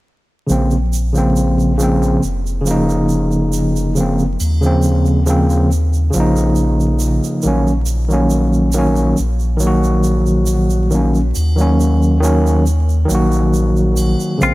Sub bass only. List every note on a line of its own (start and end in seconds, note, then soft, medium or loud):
0.49 2.19 A#1 medium
2.23 4.36 F1 medium
4.40 6.10 D#2 medium
6.15 7.20 A#1 medium
7.44 9.14 A#1 medium
9.19 11.32 A#1 medium
11.36 13.06 D#2 medium
13.10 14.15 A#1 loud
14.41 14.54 A#1 medium